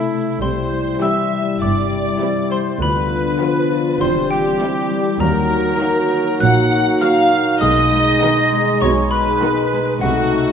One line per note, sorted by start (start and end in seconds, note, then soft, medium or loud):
0.00 0.40 C3 soft
0.00 0.26 A3 soft
0.00 0.40 A3 soft
0.00 0.42 A3 soft
0.00 0.26 C4 soft
0.00 0.17 E4 soft
0.00 0.26 E4 soft
0.00 0.39 E4 medium
0.00 0.40 E4 medium
0.00 1.00 E4 soft
0.00 2.54 E4 medium
0.00 2.78 E4 soft
0.00 0.37 E5 medium
0.11 0.44 A3 soft
0.40 0.89 C2 medium
0.40 0.89 C3 medium
0.40 2.84 C3 soft
0.40 3.10 G3 soft
0.40 2.81 G3 soft
0.40 1.00 C5 medium
0.40 1.01 C5 medium
0.40 0.98 C6 medium
0.71 1.31 G3 soft
1.01 1.46 E3 soft
1.01 1.46 G3 soft
1.01 1.46 C4 soft
1.01 2.21 E4 soft
1.01 1.46 E4 soft
1.01 1.60 E5 medium
1.01 1.62 E5 medium
1.01 1.61 E5 medium
1.01 1.58 E6 medium
1.32 1.91 G3 soft
1.61 2.08 G1 medium
1.61 2.09 G2 medium
1.61 2.84 C4 soft
1.61 2.49 D5 medium
1.61 2.52 D5 medium
1.61 2.50 D5 medium
1.61 2.48 D6 medium
1.92 2.51 G3 soft
2.21 2.66 E3 medium
2.21 2.66 G3 soft
2.21 2.66 C4 soft
2.21 2.66 E4 soft
2.21 2.84 E4 soft
2.50 2.84 G3 soft
2.50 2.80 C5 medium
2.50 2.59 C5 medium
2.50 2.82 C5 medium
2.50 2.80 C6 medium
2.80 3.28 D2 medium
2.80 3.29 D2 medium
2.80 4.04 D3 soft
2.80 4.01 B3 medium
2.80 3.99 F4 medium
2.80 4.64 F4 medium
2.80 3.71 B4 medium
2.80 4.01 B4 medium
2.80 3.99 B4 medium
2.80 3.98 B5 medium
3.12 3.70 D4 soft
3.41 3.86 D3 medium
3.41 3.86 F3 medium
3.41 4.02 F3 medium
3.41 3.87 B3 medium
3.41 3.86 F4 medium
3.41 4.04 B4 soft
3.71 4.04 D4 soft
4.00 4.48 E1 medium
4.00 4.49 E2 medium
4.00 5.23 E3 medium
4.00 5.19 G3 medium
4.00 5.02 C4 medium
4.00 5.02 G4 medium
4.00 4.29 C5 medium
4.00 4.31 C5 medium
4.00 4.29 C6 medium
4.31 4.89 G3 soft
4.31 5.19 G4 medium
4.31 5.22 G4 medium
4.31 5.17 G5 medium
4.61 5.06 G3 medium
4.61 5.06 C4 medium
4.61 5.06 E4 medium
4.61 5.20 E4 medium
4.61 5.23 G4 soft
4.90 5.23 G3 soft
5.19 5.68 D#2 medium
5.19 7.64 D#3 medium
5.19 7.57 F#3 medium
5.19 7.57 A#3 medium
5.19 9.86 D#4 medium
5.19 7.57 F#4 medium
5.19 6.40 A#4 medium
5.19 6.39 A#4 medium
5.19 6.17 A#4 medium
5.19 6.37 A#5 medium
5.50 6.09 D#4 soft
5.79 6.26 D#3 medium
5.79 6.26 F#3 medium
5.79 6.25 A#3 medium
5.79 6.25 F#4 medium
5.79 7.00 A#4 soft
6.10 6.70 D#4 medium
6.40 6.89 A#1 medium
6.40 6.89 A#2 medium
6.40 7.64 F#3 soft
6.40 7.00 F#5 medium
6.40 7.01 F#5 medium
6.40 6.97 F#6 medium
6.71 7.30 D#4 soft
7.01 7.47 D#3 medium
7.01 7.47 F#3 medium
7.01 7.46 A#3 medium
7.01 7.46 F#4 medium
7.01 7.64 A#4 medium
7.01 7.60 F5 medium
7.01 7.61 F5 medium
7.01 7.58 F6 medium
7.31 8.21 D#4 medium
7.61 8.09 B1 medium
7.61 8.09 B2 medium
7.61 8.82 B2 medium
7.61 9.98 G#3 medium
7.61 9.99 G#3 medium
7.61 10.52 D#4 medium
7.61 8.80 D#5 medium
7.61 8.83 D#5 medium
7.61 8.78 D#6 medium
7.91 8.51 G#3 soft
8.22 8.67 D#3 medium
8.22 8.67 G#3 medium
8.22 8.67 B3 medium
8.22 8.67 D#4 medium
8.22 9.42 D#4 medium
8.52 9.71 G#3 medium
8.81 9.30 B1 medium
8.81 9.30 B2 medium
8.81 10.05 B2 medium
8.81 8.89 C#5 medium
8.81 9.11 C#5 medium
8.81 9.13 C#5 medium
8.81 9.10 C#6 medium
9.11 10.05 B3 soft
9.11 10.02 B4 medium
9.11 9.85 B4 medium
9.11 10.01 B4 medium
9.11 9.98 B5 medium
9.43 9.87 D#3 medium
9.43 9.87 G#3 medium
9.43 9.88 B3 medium
9.43 10.52 D#4 medium
9.43 9.88 D#4 medium
9.72 10.05 G#3 soft
10.01 10.50 C2 medium
10.01 10.50 C3 medium
10.01 10.52 C3 medium
10.01 10.52 A3 medium
10.01 10.52 D#4 medium
10.01 10.52 F#4 medium
10.01 10.41 F#4 medium
10.01 10.52 F#4 medium
10.01 10.52 F#5 medium
10.33 10.52 A3 soft